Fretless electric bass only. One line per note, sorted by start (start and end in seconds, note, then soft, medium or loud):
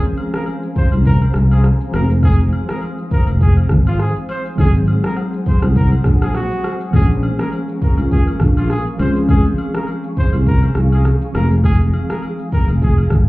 0.92 1.24 C2 medium
1.35 1.69 C2 medium
1.94 2.50 F1 medium
3.28 3.60 F1 medium
3.71 4.05 G#1 medium
4.58 4.93 G#1 loud
5.63 5.95 C2 medium
6.05 6.40 A#1 medium
6.93 7.28 A#1 loud
7.98 8.30 C#2 loud
8.41 8.75 A#1 medium
8.99 9.44 C#2 loud
10.33 10.65 C2 medium
10.76 11.10 C2 medium
11.35 11.91 F1 loud
12.68 13.01 F1 medium
13.12 13.29 G#1 loud